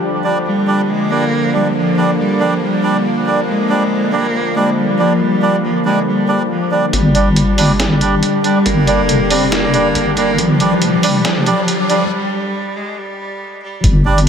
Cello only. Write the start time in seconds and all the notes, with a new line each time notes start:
0.46 G3
0.89 G#3
1.11 A#3
1.54 G3
1.75 F3
2.19 G3
2.40 F3
2.62 G3
3.48 G#3
4.13 A#3
4.56 G#3
4.77 G3
4.99 F3
5.20 G3
5.64 F3
5.85 G#3
6.07 G3
6.50 F3
6.93 G3
7.58 G#3
7.80 G3
8.44 G3
8.66 A#3
9.31 C4
9.52 A#3
10.17 A#3
10.39 F3
11.03 G3
11.25 F3
11.90 F3
12.11 G3
12.76 G#3
12.98 G3
13.63 G3